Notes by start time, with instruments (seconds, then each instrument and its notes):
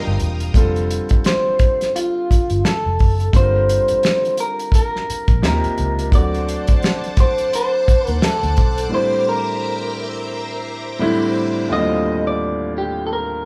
Already playing: horn section C3 D#3 A#3 D#4, grand piano G3 C4 D4 F4 A#4, clean electric guitar A#4, string machine A#4 F5 G5 D#6
0.07 fingered electric bass G1
0.20 fingered electric bass E1, closed hi-hat
0.40 closed hi-hat
0.54 fingered electric bass F1, grand piano D3 G3 C4 F4, kick, closed hi-hat
0.58 grand piano A4
0.76 closed hi-hat
0.91 closed hi-hat
1.09 muted fingered electric bass stroke, kick, closed hi-hat
1.24 clean electric guitar C5, snare, closed hi-hat
1.59 kick, closed hi-hat
1.81 snare, closed hi-hat
1.96 clean electric guitar F4, closed hi-hat
2.31 muted fingered electric bass stroke, kick, closed hi-hat
2.50 fingered electric bass G1, closed hi-hat
2.65 clean electric guitar A4, snare, closed hi-hat
2.86 fingered electric bass F1
2.99 fingered electric bass F#1, kick, open hi-hat
3.20 closed hi-hat
3.33 fingered electric bass G1, grand piano D3 G3 C4 F4 A4, clean electric guitar C5, kick, closed hi-hat
3.43 grand piano A#4
3.69 closed hi-hat
3.88 muted fingered electric bass stroke, closed hi-hat
4.03 snare, closed hi-hat
4.25 closed hi-hat
4.37 clean electric guitar A#4, closed hi-hat
4.59 closed hi-hat
4.72 clean electric guitar A#4, kick, closed hi-hat
4.96 snare
5.10 muted fingered electric bass stroke, closed hi-hat
5.28 fingered electric bass A#1, kick, closed hi-hat
5.42 fingered electric bass D#2, grand piano C3 F3 A#3 D#4 G4, clean electric guitar A#4, snare, closed hi-hat
5.64 muted fingered electric bass stroke, closed hi-hat
5.78 fingered electric bass C#2, closed hi-hat
5.99 closed hi-hat
6.11 fingered electric bass D2, grand piano D3 F#3 A3 C4, string machine C5 F#5 A5 D6, clean electric guitar D5, kick, closed hi-hat
6.15 grand piano F#4
6.34 closed hi-hat
6.49 closed hi-hat
6.67 muted fingered electric bass stroke, kick, closed hi-hat
6.83 snare, closed hi-hat
7.04 closed hi-hat
7.17 clean electric guitar C5, kick, closed hi-hat
7.38 closed hi-hat
7.53 clean electric guitar C5, closed hi-hat
7.88 muted fingered electric bass stroke, kick, closed hi-hat
8.07 fingered electric bass D#2, clean electric guitar A#4, closed hi-hat
8.22 clean electric guitar A4, snare, closed hi-hat
8.43 fingered electric bass D2, closed hi-hat
8.57 fingered electric bass B1, kick, closed hi-hat
8.78 closed hi-hat
8.89 grand piano A2 D3 G3 C4 E4, string machine E5 A#5
8.94 clean electric guitar C5
9.29 clean electric guitar A#4
10.99 grand piano A2 D3 G3 C4 E4, string machine C5 D6
11.69 grand piano D#2 A2 D3 F3 C4
11.73 grand piano F4, clean electric guitar D#5
11.77 grand piano G3
12.27 clean electric guitar D5
12.78 clean electric guitar G4
13.07 clean electric guitar A4
13.13 clean electric guitar A#4